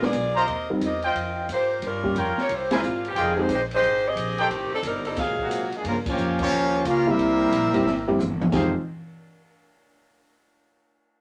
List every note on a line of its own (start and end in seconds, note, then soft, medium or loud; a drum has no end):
0.00 0.12 A#1 medium
0.00 0.13 G#3 medium
0.00 0.13 B3 medium
0.00 0.37 B3 medium
0.00 0.13 D4 medium
0.00 0.13 F4 medium
0.00 0.36 F4 medium
0.00 0.36 G#4 medium
0.00 0.14 A#4 medium
0.00 0.37 D5 medium
0.00 snare medium
0.13 0.46 B1 medium
0.13 hi-hat pedal medium
0.13 ride medium
0.36 0.68 C4 medium
0.36 0.44 F4 medium
0.36 0.68 G4 medium
0.36 0.68 A#4 medium
0.36 0.44 C5 medium
0.36 0.44 D#5 medium
0.36 0.68 D#5 medium
0.36 0.44 A#5 medium
0.47 0.80 D#2 medium
0.47 ride medium
0.70 0.81 G3 medium
0.70 0.81 C4 medium
0.70 0.81 D#4 medium
0.70 0.81 F4 medium
0.70 0.81 A#4 medium
0.81 1.14 E2 medium
0.81 1.03 C4 medium
0.81 1.03 G4 medium
0.81 hi-hat pedal medium
0.81 ride medium
0.85 1.03 A#4 medium
0.85 1.03 D#5 medium
1.02 1.47 F4 medium
1.02 1.47 C5 medium
1.02 1.47 D#5 medium
1.02 1.47 G5 loud
1.02 ride medium
1.15 1.48 F2 medium
1.15 ride medium
1.49 1.81 G#2 medium
1.49 1.82 F4 medium
1.49 hi-hat pedal medium
1.49 ride medium
1.53 1.82 A#3 medium
1.53 1.82 G4 medium
1.53 1.82 C5 medium
1.82 2.14 G2 medium
1.82 2.35 G3 medium
1.82 2.35 C#4 medium
1.82 2.35 F4 medium
1.82 2.35 A#4 medium
1.82 ride medium
2.03 2.15 G3 medium
2.03 2.15 A#3 medium
2.03 2.15 C#4 medium
2.03 2.15 F4 medium
2.03 2.15 G4 medium
2.03 kick medium
2.15 2.35 F2 medium
2.15 2.50 F4 medium
2.15 2.50 A#4 medium
2.15 2.50 C#5 medium
2.15 2.50 G5 medium
2.15 hi-hat pedal medium
2.15 ride medium
2.37 2.51 A#3 medium
2.37 2.51 F4 medium
2.37 2.51 G4 medium
2.37 2.51 C#5 medium
2.37 muted upright bass stroke soft
2.37 snare soft
2.49 2.82 C2 medium
2.49 ride medium
2.54 2.73 A#3 medium
2.54 2.73 E4 medium
2.54 2.73 G4 medium
2.54 2.74 C5 medium
2.71 2.82 G#3 medium
2.71 2.82 A#3 medium
2.71 2.82 C4 medium
2.71 2.80 E4 medium
2.71 2.82 E4 medium
2.71 2.82 G#4 medium
2.71 2.79 A#4 medium
2.71 2.79 C5 medium
2.71 2.79 G#5 medium
2.71 snare medium
2.71 ride medium
2.75 3.04 G3 medium
2.75 3.04 A#3 medium
2.75 3.04 C4 medium
2.75 3.04 F4 medium
2.82 3.15 G#1 medium
2.82 hi-hat pedal medium
3.05 3.19 G4 medium
3.05 ride soft
3.09 3.19 E3 medium
3.09 3.19 A#3 medium
3.09 3.19 C4 medium
3.16 3.48 F1 medium
3.16 3.31 F4 medium
3.16 3.31 G#4 medium
3.16 3.31 D#5 medium
3.16 3.31 G5 medium
3.16 ride medium
3.20 3.40 D#3 medium
3.20 3.40 G3 medium
3.20 3.40 C4 medium
3.20 3.40 G#4 medium
3.37 3.49 F3 medium
3.37 3.49 G#3 medium
3.37 3.49 C4 medium
3.37 3.49 D#4 medium
3.37 3.49 G4 medium
3.41 3.52 G#3 medium
3.41 3.52 D#4 medium
3.41 3.52 G4 medium
3.41 3.51 C5 loud
3.48 3.81 A#1 medium
3.48 hi-hat pedal medium
3.48 ride medium
3.52 3.62 G#3 medium
3.52 3.63 D#4 medium
3.52 3.62 G4 medium
3.52 3.62 C5 medium
3.71 4.04 D#4 medium
3.71 4.05 C5 loud
3.71 ride medium
3.75 4.05 G#3 medium
3.75 4.05 G4 medium
3.82 4.15 G#1 medium
3.82 ride medium
4.08 4.40 C4 medium
4.08 4.40 G4 medium
4.08 4.40 G#4 medium
4.08 4.40 D#5 loud
4.16 4.48 A#1 medium
4.16 hi-hat pedal medium
4.16 ride medium
4.38 4.73 D#3 medium
4.38 4.74 A3 medium
4.38 4.73 C4 medium
4.38 4.47 D#4 medium
4.38 4.73 G4 medium
4.38 4.47 A4 medium
4.38 4.47 C5 medium
4.38 4.47 G5 loud
4.38 ride soft
4.49 4.70 A1 medium
4.49 ride medium
4.70 4.79 G3 medium
4.70 muted upright bass stroke soft
4.74 4.79 C4 medium
4.74 4.80 D#4 medium
4.74 4.80 A4 medium
4.82 5.16 G1 medium
4.82 hi-hat pedal medium
4.82 ride medium
4.87 5.05 G3 medium
4.87 5.05 C4 medium
4.87 5.06 D#4 medium
4.87 5.05 A#4 medium
5.05 5.18 G3 medium
5.05 5.17 C4 medium
5.05 5.18 D#4 medium
5.05 5.18 A4 medium
5.05 ride medium
5.17 5.41 A#2 medium
5.17 5.40 C3 medium
5.17 5.70 F#3 medium
5.17 5.70 G#3 medium
5.17 5.70 C4 medium
5.17 5.70 G#4 medium
5.17 5.70 F5 medium
5.17 kick medium
5.17 snare soft
5.17 crash medium
5.17 ride medium
5.39 5.72 A#2 medium
5.39 5.72 C3 medium
5.39 5.71 F#3 medium
5.39 5.72 A#3 medium
5.39 5.72 F#4 medium
5.39 kick medium
5.51 hi-hat pedal medium
5.51 ride medium
5.72 5.86 G#3 medium
5.72 5.86 A#3 medium
5.72 5.86 D4 medium
5.72 5.86 G#4 medium
5.72 ride soft
5.84 6.16 G2 medium
5.84 5.96 C#3 medium
5.84 5.96 F3 medium
5.84 5.97 G3 medium
5.84 5.96 A#3 medium
5.84 5.97 C#4 medium
5.84 5.96 F4 medium
5.84 5.97 A#4 medium
5.84 ride medium
6.06 6.38 F3 medium
6.06 6.39 A#3 medium
6.06 6.39 C#4 medium
6.06 6.39 F4 medium
6.06 6.39 G4 medium
6.06 6.39 C#5 loud
6.06 kick loud
6.06 crash medium
6.17 6.50 F2 medium
6.17 hi-hat pedal medium
6.39 6.83 F3 medium
6.39 6.83 A#3 medium
6.39 6.83 C#4 medium
6.39 6.83 F4 loud
6.39 6.83 G4 medium
6.39 6.83 C#5 loud
6.39 kick medium
6.39 ride medium
6.51 6.84 D#2 medium
6.51 ride medium
6.84 7.17 C#2 medium
6.84 7.06 A#3 medium
6.84 7.07 C#4 medium
6.84 7.07 F4 medium
6.84 7.07 A#4 medium
6.84 hi-hat pedal medium
6.84 ride medium
6.88 7.08 C#4 medium
6.88 7.07 G4 medium
6.88 7.08 F5 loud
7.07 7.50 G3 medium
7.07 8.20 G3 loud
7.07 8.19 A#3 loud
7.07 7.50 A#3 medium
7.07 7.50 C4 medium
7.07 8.20 C4 loud
7.07 7.50 E4 medium
7.07 8.20 E4 loud
7.07 7.50 G4 medium
7.07 8.20 G4 medium
7.07 8.20 A#4 medium
7.07 8.20 E5 loud
7.18 7.51 C2 medium
7.18 ride medium
7.51 7.64 A#1 loud
7.51 hi-hat pedal medium
7.51 ride medium
7.63 7.73 G1 medium
7.74 7.85 E1 medium
7.74 7.85 G3 medium
7.74 7.85 A#3 medium
7.74 7.85 C4 medium
7.74 7.85 E4 medium
7.74 7.85 G4 medium
7.74 ride medium
7.85 8.18 G#1 medium
7.85 snare medium
8.07 8.18 G3 medium
8.07 8.18 A#3 medium
8.07 8.18 C4 medium
8.07 8.18 E4 medium
8.07 8.18 G4 medium
8.07 floor tom medium
8.19 8.51 G1 loud
8.19 hi-hat pedal medium
8.19 high tom medium
8.41 high tom loud
8.52 8.72 F1 medium
8.52 8.73 F2 medium
8.52 8.73 C3 medium
8.52 8.73 D#3 medium
8.52 8.72 F3 medium
8.52 8.73 G#3 medium
8.52 8.72 G#3 medium
8.52 8.72 C4 medium
8.52 8.72 D#4 medium
8.52 8.73 D#4 medium
8.52 8.72 G4 medium
8.52 8.73 G#4 medium
8.52 8.73 C5 medium
8.52 8.73 F5 medium
8.52 kick medium
8.52 snare medium
8.52 crash medium